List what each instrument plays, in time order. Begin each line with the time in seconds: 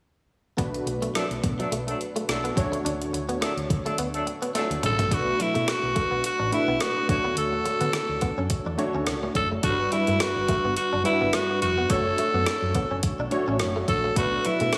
0.57 fingered electric bass B1, synth keys B2 A3 D4 F#4 B4, clean electric guitar B3, kick, closed hi-hat
0.74 closed hi-hat
0.86 fingered electric bass B1, muted clean electric guitar stroke, closed hi-hat
1.02 clean electric guitar A3, closed hi-hat
1.15 horn section F#3 A3 D4 A4, clean electric guitar F#3, cross-stick, closed hi-hat
1.31 fingered electric bass B1, closed hi-hat
1.44 fingered electric bass B2, muted clean electric guitar stroke, kick, closed hi-hat
1.59 horn section F#3 A3 D4 A4, clean electric guitar F#3, closed hi-hat
1.72 fingered electric bass B1, clean electric guitar A3, closed hi-hat
1.87 horn section F#3 A3 D4 A4, muted clean electric guitar stroke, closed hi-hat
2.01 closed hi-hat
2.16 clean electric guitar A3, closed hi-hat
2.28 fingered electric bass B1, horn section F#3 A3 D4 A4, cross-stick, closed hi-hat
2.44 clean electric guitar B3, closed hi-hat
2.55 fingered electric bass D2, synth keys D3 A3 D4 F#4 C#5, muted clean electric guitar stroke, kick, closed hi-hat
2.72 clean electric guitar A3, closed hi-hat
2.85 fingered electric bass D2, clean electric guitar D4, closed hi-hat
3.02 closed hi-hat
3.13 fingered electric bass D2, muted clean electric guitar stroke, closed hi-hat
3.29 clean electric guitar B3, closed hi-hat
3.41 horn section F#3 A3 D4 A4, clean electric guitar A3, cross-stick, closed hi-hat
3.57 fingered electric bass D2, closed hi-hat
3.70 fingered electric bass D3, muted clean electric guitar stroke, kick, closed hi-hat
3.85 horn section F#3 A3 D4 A4, clean electric guitar A3, closed hi-hat
3.98 fingered electric bass D2, clean electric guitar B3, closed hi-hat
4.14 horn section F#3 A3 D4 A4, closed hi-hat
4.27 muted clean electric guitar stroke, closed hi-hat
4.42 clean electric guitar B3, closed hi-hat
4.54 horn section F#3 A3 D4 A4, clean electric guitar A3, snare, closed hi-hat
4.70 fingered electric bass D2, closed hi-hat
4.83 fingered electric bass A1, alto saxophone A4, muted clean electric guitar stroke, closed hi-hat, mid tom
4.99 fingered electric bass A#1, clean electric guitar A3, closed hi-hat, floor tom
5.11 fingered electric bass B1, synth keys B2 A3 D4 F#4 B4, alto saxophone F#4, kick, closed hi-hat
5.27 muted clean electric guitar stroke
5.40 clean electric guitar F#3, alto saxophone E4, closed hi-hat
5.54 fingered electric bass B2, clean electric guitar A3, closed hi-hat
5.68 alto saxophone F#4, muted clean electric guitar stroke, cross-stick, closed hi-hat
5.83 fingered electric bass B1
5.96 clean electric guitar A3, kick, closed hi-hat
6.11 fingered electric bass B1, clean electric guitar B3
6.24 alto saxophone F#4, closed hi-hat
6.39 fingered electric bass A1, clean electric guitar D4
6.52 synth keys A3 D4 F#4 B4, alto saxophone E4, muted clean electric guitar stroke, closed hi-hat
6.68 fingered electric bass B1, clean electric guitar B3
6.80 clean electric guitar A3, alto saxophone F#4, cross-stick, closed hi-hat
6.96 muted clean electric guitar stroke
7.08 fingered electric bass D2, synth keys D3 A3 D4 F#4 C#5, alto saxophone F#4, kick, closed hi-hat
7.24 clean electric guitar B3
7.36 fingered electric bass D2, alto saxophone A4, closed hi-hat
7.53 muted clean electric guitar stroke
7.65 clean electric guitar A3, closed hi-hat
7.81 fingered electric bass D3, clean electric guitar B3, closed hi-hat
7.93 muted clean electric guitar stroke, cross-stick, closed hi-hat
8.09 fingered electric bass D2
8.21 clean electric guitar B3, kick, closed hi-hat
8.37 fingered electric bass F#2, clean electric guitar C#4
8.50 kick, closed hi-hat
8.66 fingered electric bass E2, clean electric guitar D4
8.78 synth keys A3 D4 F#4 C#5, muted clean electric guitar stroke, closed hi-hat
8.94 fingered electric bass D2, clean electric guitar C#4
9.06 fingered electric bass C#2, cross-stick, closed hi-hat
9.23 clean electric guitar A3
9.35 fingered electric bass F#1, alto saxophone A4, muted clean electric guitar stroke, kick, closed hi-hat
9.52 clean electric guitar A3
9.62 fingered electric bass G1, synth keys G2 G3 D4 F#4 A4, alto saxophone F#4, kick, closed hi-hat
9.70 synth keys B4
9.80 muted clean electric guitar stroke
9.92 clean electric guitar G3, alto saxophone E4, closed hi-hat
10.07 fingered electric bass G2, clean electric guitar A3, closed hi-hat
10.20 alto saxophone F#4, muted clean electric guitar stroke, cross-stick, closed hi-hat
10.36 fingered electric bass G1
10.48 clean electric guitar A3, kick, closed hi-hat
10.64 fingered electric bass G1, clean electric guitar B3
10.77 alto saxophone F#4, closed hi-hat
10.93 fingered electric bass F#1, clean electric guitar D4
11.04 synth keys G3 D4 F#4 B4, alto saxophone E4, muted clean electric guitar stroke, closed hi-hat
11.21 fingered electric bass G1, clean electric guitar B3
11.33 clean electric guitar A3, alto saxophone F#4, cross-stick, closed hi-hat
11.50 muted clean electric guitar stroke
11.62 fingered electric bass F1, alto saxophone F#4, closed hi-hat
11.78 clean electric guitar B3
11.89 fingered electric bass F#1, synth keys A3 D4 F#4 C#5, alto saxophone A4, kick, closed hi-hat
12.06 muted clean electric guitar stroke
12.18 clean electric guitar A3, closed hi-hat
12.34 fingered electric bass F#2, clean electric guitar B3
12.46 muted clean electric guitar stroke, cross-stick, closed hi-hat
12.62 fingered electric bass F#2
12.75 clean electric guitar B3, kick, closed hi-hat
12.91 fingered electric bass F#1, clean electric guitar C#4
13.03 kick, closed hi-hat
13.19 fingered electric bass B1, clean electric guitar D4
13.31 synth keys A3 D4 F#4 C#5, muted clean electric guitar stroke, closed hi-hat
13.47 fingered electric bass A1, clean electric guitar C#4
13.59 cross-stick, closed hi-hat
13.76 clean electric guitar A3
13.88 fingered electric bass A#1, alto saxophone A4, muted clean electric guitar stroke, kick, closed hi-hat
14.04 clean electric guitar A3
14.15 fingered electric bass B1, synth keys B2 A3 D4 F#4 B4, alto saxophone F#4, kick, closed hi-hat
14.33 muted clean electric guitar stroke
14.45 clean electric guitar F#3, alto saxophone E4, closed hi-hat
14.60 fingered electric bass B2, clean electric guitar A3, closed hi-hat
14.73 alto saxophone F#4, muted clean electric guitar stroke, cross-stick, closed hi-hat